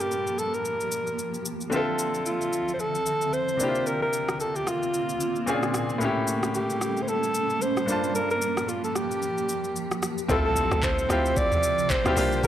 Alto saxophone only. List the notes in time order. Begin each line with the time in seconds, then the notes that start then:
0.01 G4
0.39 A4
0.54 A#4
2.26 F4
2.74 C5
2.80 A4
3.33 C5
3.87 A#4
4.03 A#4
4.41 A4
4.56 G4
4.67 F4
6.55 G4
7.03 C5
7.09 A4
7.62 C5
8.16 A#4
8.31 A#4
8.69 F4
8.85 A4
8.96 G4
10.30 A4
10.45 A4
10.84 C5
11.37 D5
11.91 C5